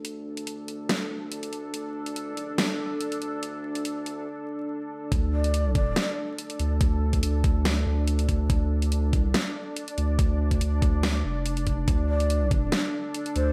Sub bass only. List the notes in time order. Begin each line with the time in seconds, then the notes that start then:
Already playing: D2
0.47 D2
1.10 D2
1.52 D2
1.74 D2
3.22 D2
3.85 D2
5.12 D2
6.60 D2
7.23 D2
7.86 D2
8.28 D2
8.50 D2
9.09 C#2
9.98 D2
10.61 D2
11.24 F1
11.88 D2
13.36 D2